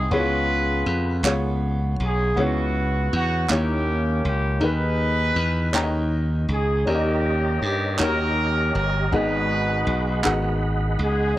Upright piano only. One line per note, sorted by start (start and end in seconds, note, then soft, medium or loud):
0.00 0.14 G#2 medium
0.00 0.14 C4 medium
0.00 0.14 D#4 medium
0.00 0.14 F#4 medium
0.00 0.14 G#4 medium
0.00 0.14 D#5 medium
0.11 1.21 C#3 medium
0.11 1.07 B3 medium
0.11 1.08 C#4 medium
0.11 0.19 E4 medium
0.11 1.09 G#4 medium
0.11 1.09 C#5 medium
0.19 1.11 F4 medium
1.24 2.20 B3 medium
1.24 2.20 C#4 medium
1.24 2.21 F4 medium
1.24 2.21 G#4 medium
1.24 2.21 C#5 medium
2.36 3.46 C#3 medium
2.36 3.32 B3 medium
2.36 3.33 C#4 medium
2.36 3.33 E4 medium
2.36 3.34 G#4 medium
2.36 3.34 C#5 medium
3.49 4.58 D#3 medium
3.49 4.45 A#3 medium
3.49 4.45 D#4 medium
3.49 4.46 E4 medium
3.49 4.46 G4 medium
3.49 4.46 C#5 medium
4.60 5.71 D#3 medium
4.60 5.57 D#4 medium
4.60 5.58 G#4 medium
4.60 5.59 B4 medium
5.73 6.83 D#3 medium
5.73 6.69 C#4 medium
5.73 6.70 D#4 medium
5.73 5.82 C#5 medium
5.73 6.70 G5 medium
5.73 6.71 A#5 medium
5.83 6.74 D#5 medium
6.85 7.82 C#4 medium
6.85 7.82 D#4 medium
6.85 7.82 G4 medium
6.85 7.83 A#4 medium
6.85 6.94 D5 medium
6.95 7.87 D#5 medium
7.98 9.08 D#3 medium
7.98 8.94 C#4 medium
7.98 8.94 D#4 medium
7.98 8.06 F#4 soft
7.98 8.95 A#4 medium
7.98 8.96 C#5 medium
8.06 8.98 G4 medium
9.12 10.21 G#2 medium
9.12 10.07 B3 medium
9.12 10.08 D#4 medium
9.12 10.08 F#4 medium
9.12 10.08 G#4 medium
9.12 10.09 D#5 medium
10.23 11.19 B3 medium
10.23 11.20 D#4 medium
10.23 11.20 F#4 medium
10.23 11.20 G#4 medium
10.23 11.21 F#5 medium